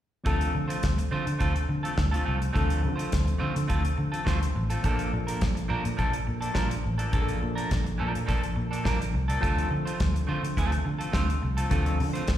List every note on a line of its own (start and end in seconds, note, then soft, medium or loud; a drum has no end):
0.24 0.47 D2 medium
0.24 2.50 F3 medium
0.24 0.52 A3 medium
0.24 2.50 C4 medium
0.24 0.52 C4 medium
0.24 2.51 D4 medium
0.24 0.53 F4 medium
0.24 2.52 A4 medium
0.24 0.53 A4 medium
0.24 kick medium
0.24 closed hi-hat medium
0.41 closed hi-hat soft
0.54 0.75 D3 loud
0.54 muted clean electric guitar stroke soft
0.68 0.83 A3 soft
0.68 0.83 C4 medium
0.68 0.83 F4 medium
0.68 0.82 C5 soft
0.68 closed hi-hat soft
0.83 1.04 D2 medium
0.83 kick loud
0.83 snare loud
0.83 closed hi-hat medium
0.98 muted clean electric guitar stroke soft
0.98 closed hi-hat soft
1.11 1.23 D3 medium
1.11 1.30 A3 medium
1.11 1.26 C4 medium
1.11 1.26 F4 medium
1.11 1.26 C5 medium
1.26 1.37 D3 medium
1.26 muted clean electric guitar stroke soft
1.26 closed hi-hat soft
1.39 1.61 D2 medium
1.39 1.58 A3 medium
1.39 1.55 C4 medium
1.39 1.54 F4 medium
1.39 1.54 A4 medium
1.39 kick medium
1.39 closed hi-hat soft
1.55 muted clean electric guitar stroke soft
1.55 closed hi-hat soft
1.68 1.90 D3 medium
1.68 muted clean electric guitar stroke soft
1.83 1.95 A3 soft
1.83 1.96 C4 soft
1.83 1.96 F4 medium
1.83 1.97 A4 medium
1.83 closed hi-hat soft
1.96 2.18 D2 medium
1.96 muted clean electric guitar stroke soft
1.96 kick medium
1.96 snare loud
1.96 closed hi-hat medium
2.11 2.23 A3 medium
2.11 2.24 C4 medium
2.11 2.25 F4 medium
2.11 2.25 A4 medium
2.11 closed hi-hat soft
2.25 2.48 C2 medium
2.25 2.41 A3 medium
2.25 2.40 C4 medium
2.25 2.39 F4 medium
2.25 2.38 A4 medium
2.39 muted clean electric guitar stroke soft
2.39 closed hi-hat soft
2.53 2.86 D2 loud
2.53 4.80 F3 medium
2.53 2.81 A3 medium
2.53 2.81 C4 medium
2.53 4.80 C4 medium
2.53 4.81 D4 medium
2.53 2.81 F4 medium
2.53 2.81 A4 medium
2.53 kick medium
2.53 closed hi-hat soft
2.57 4.81 A4 medium
2.70 closed hi-hat soft
2.82 3.05 D3 loud
2.82 muted clean electric guitar stroke soft
2.96 3.12 A3 soft
2.96 3.12 C4 soft
2.96 3.11 F4 medium
2.96 3.11 C5 medium
2.96 closed hi-hat soft
3.12 3.33 D2 medium
3.12 kick loud
3.12 snare loud
3.12 closed hi-hat medium
3.25 muted clean electric guitar stroke soft
3.25 closed hi-hat soft
3.38 3.52 D3 loud
3.38 3.59 A3 medium
3.38 3.55 C4 medium
3.38 3.54 F4 medium
3.38 3.54 C5 medium
3.55 3.66 D3 medium
3.55 muted clean electric guitar stroke soft
3.55 closed hi-hat soft
3.67 3.90 D2 medium
3.67 3.87 A3 medium
3.67 3.83 C4 medium
3.67 3.83 F4 medium
3.67 3.82 A4 medium
3.67 kick medium
3.67 closed hi-hat soft
3.83 muted clean electric guitar stroke soft
3.83 closed hi-hat soft
3.96 4.19 D3 medium
3.96 muted clean electric guitar stroke soft
4.12 4.23 A3 soft
4.12 4.25 C4 soft
4.12 4.25 F4 soft
4.12 4.26 A4 medium
4.12 closed hi-hat soft
4.25 4.47 D2 medium
4.25 4.45 A3 medium
4.25 4.41 C4 medium
4.25 4.40 F4 medium
4.25 4.40 C5 medium
4.25 kick loud
4.25 snare loud
4.25 closed hi-hat soft
4.41 muted clean electric guitar stroke soft
4.41 closed hi-hat soft
4.55 4.76 A1 medium
4.55 muted clean electric guitar stroke soft
4.70 4.83 A3 soft
4.70 4.84 C4 medium
4.70 4.84 F4 soft
4.70 4.84 A4 medium
4.70 closed hi-hat soft
4.82 5.05 A#1 medium
4.82 7.09 F3 medium
4.82 5.11 F3 medium
4.82 7.09 A#3 medium
4.82 5.11 A#3 medium
4.82 7.09 D4 medium
4.82 5.11 D4 medium
4.82 7.10 A4 medium
4.82 5.12 A4 medium
4.82 kick medium
4.82 closed hi-hat medium
4.99 closed hi-hat soft
5.13 5.34 A#2 medium
5.13 muted clean electric guitar stroke soft
5.27 5.42 F3 soft
5.27 5.42 A#3 soft
5.27 5.41 D4 soft
5.27 5.41 A#4 medium
5.27 closed hi-hat medium
5.41 5.62 A#1 medium
5.41 kick loud
5.41 snare loud
5.41 closed hi-hat medium
5.55 muted clean electric guitar stroke soft
5.55 closed hi-hat soft
5.68 5.81 A#2 medium
5.68 5.88 F3 medium
5.68 5.84 A#3 medium
5.68 5.84 D4 medium
5.68 5.84 A#4 medium
5.84 5.95 A#2 medium
5.84 muted clean electric guitar stroke soft
5.84 closed hi-hat soft
5.97 6.19 A#1 medium
5.97 6.17 F3 medium
5.97 6.12 A#3 medium
5.97 6.12 D4 medium
5.97 6.11 A4 medium
5.97 kick medium
5.97 closed hi-hat soft
6.12 muted clean electric guitar stroke soft
6.12 closed hi-hat soft
6.27 6.48 A#2 medium
6.27 muted clean electric guitar stroke soft
6.41 6.53 F3 soft
6.41 6.53 A#3 soft
6.41 6.54 D4 medium
6.41 6.55 A4 medium
6.41 closed hi-hat soft
6.54 6.76 A#1 medium
6.54 6.74 F3 medium
6.54 6.70 A#3 medium
6.54 6.69 D4 medium
6.54 6.69 A#4 medium
6.54 kick loud
6.54 snare loud
6.54 closed hi-hat medium
6.70 muted clean electric guitar stroke soft
6.70 closed hi-hat soft
6.83 7.06 A1 medium
6.83 muted clean electric guitar stroke soft
6.98 7.10 F3 soft
6.98 7.12 A#3 soft
6.98 7.12 D4 soft
6.98 7.12 A4 medium
6.98 closed hi-hat soft
7.12 7.34 A#1 loud
7.12 7.39 F3 medium
7.12 9.38 F3 medium
7.12 7.40 A#3 medium
7.12 9.39 A#3 medium
7.12 7.40 D4 medium
7.12 9.39 D4 medium
7.12 7.21 G#4 medium
7.12 7.40 A4 medium
7.12 kick loud
7.12 closed hi-hat medium
7.22 9.43 A4 medium
7.28 closed hi-hat soft
7.41 7.63 A#2 medium
7.41 muted clean electric guitar stroke soft
7.55 7.71 F3 soft
7.55 7.70 A#3 soft
7.55 7.70 D4 medium
7.55 7.70 A#4 medium
7.55 closed hi-hat soft
7.71 7.92 A#1 medium
7.71 kick loud
7.71 snare loud
7.71 closed hi-hat medium
7.84 muted clean electric guitar stroke soft
7.84 closed hi-hat soft
7.98 8.11 A#2 medium
7.98 8.19 F3 medium
7.98 8.14 A#3 medium
7.98 8.13 D4 medium
7.98 8.13 A#4 medium
8.14 8.25 A#2 medium
8.14 muted clean electric guitar stroke soft
8.14 closed hi-hat soft
8.26 8.49 A#1 medium
8.26 8.46 F3 medium
8.26 8.43 A#3 medium
8.26 8.42 D4 medium
8.26 8.42 A4 medium
8.26 kick medium
8.26 closed hi-hat soft
8.43 muted clean electric guitar stroke soft
8.43 closed hi-hat soft
8.55 8.87 A#2 medium
8.55 muted clean electric guitar stroke soft
8.71 8.83 F3 soft
8.71 8.83 A#3 soft
8.71 8.84 D4 medium
8.71 8.85 A4 soft
8.71 closed hi-hat soft
8.84 9.06 A#1 medium
8.84 9.03 F3 medium
8.84 9.00 A#3 medium
8.84 9.00 D4 medium
8.84 9.00 A#4 medium
8.84 kick medium
8.84 snare medium
8.84 closed hi-hat medium
9.00 muted clean electric guitar stroke soft
9.00 closed hi-hat soft
9.13 9.34 C2 medium
9.13 muted clean electric guitar stroke soft
9.28 9.40 F3 soft
9.28 9.41 A#3 medium
9.28 9.41 D4 medium
9.28 9.41 A4 medium
9.28 closed hi-hat soft
9.41 9.63 D2 medium
9.41 11.67 F3 medium
9.41 9.68 A3 medium
9.41 9.69 C4 medium
9.41 11.67 C4 medium
9.41 11.68 D4 medium
9.41 9.69 F4 medium
9.41 9.69 A4 medium
9.41 11.68 A4 medium
9.41 kick loud
9.41 closed hi-hat medium
9.58 closed hi-hat soft
9.70 9.91 D3 medium
9.70 muted clean electric guitar stroke soft
9.85 10.00 A3 soft
9.85 10.00 C4 soft
9.85 10.00 F4 soft
9.85 9.99 C5 medium
9.85 closed hi-hat medium
10.00 10.21 D2 medium
10.00 kick loud
10.00 snare loud
10.00 closed hi-hat medium
10.14 muted clean electric guitar stroke soft
10.14 closed hi-hat soft
10.27 10.39 D3 medium
10.27 10.46 A3 medium
10.27 10.43 C4 medium
10.27 10.43 F4 medium
10.27 10.43 C5 medium
10.43 10.53 D3 medium
10.43 muted clean electric guitar stroke soft
10.43 closed hi-hat soft
10.57 10.78 D2 medium
10.57 10.78 A3 medium
10.57 10.71 C4 medium
10.57 10.71 F4 medium
10.57 10.71 A4 medium
10.57 kick medium
10.57 closed hi-hat medium
10.72 muted clean electric guitar stroke soft
10.72 closed hi-hat soft
10.84 11.06 D3 medium
10.84 muted clean electric guitar stroke soft
10.98 11.11 A3 soft
10.98 11.12 C4 soft
10.98 11.12 F4 soft
10.98 11.13 A4 medium
10.98 closed hi-hat soft
11.12 11.34 D2 medium
11.12 11.32 A3 medium
11.12 11.29 C4 medium
11.12 11.28 F4 medium
11.12 11.28 C5 medium
11.12 kick medium
11.12 snare loud
11.12 closed hi-hat medium
11.29 muted clean electric guitar stroke soft
11.29 closed hi-hat soft
11.42 11.64 C2 medium
11.42 muted clean electric guitar stroke soft
11.57 11.69 A3 soft
11.57 11.70 C4 medium
11.57 11.70 F4 medium
11.57 11.71 A4 medium
11.57 closed hi-hat medium
11.70 12.02 D2 loud
11.70 12.38 F3 medium
11.70 11.97 A3 medium
11.70 12.38 C4 medium
11.70 11.98 C4 medium
11.70 12.38 D4 medium
11.70 11.98 F4 medium
11.70 11.98 A4 medium
11.70 12.38 A4 medium
11.70 kick loud
11.70 closed hi-hat medium
11.86 closed hi-hat soft
11.99 12.20 D3 loud
11.99 muted clean electric guitar stroke soft
11.99 open hi-hat soft
12.13 12.29 A3 medium
12.13 12.29 C4 medium
12.13 12.28 F4 soft
12.13 12.28 C5 medium
12.13 closed hi-hat medium
12.27 12.38 D2 loud
12.27 kick loud
12.27 snare loud
12.27 closed hi-hat medium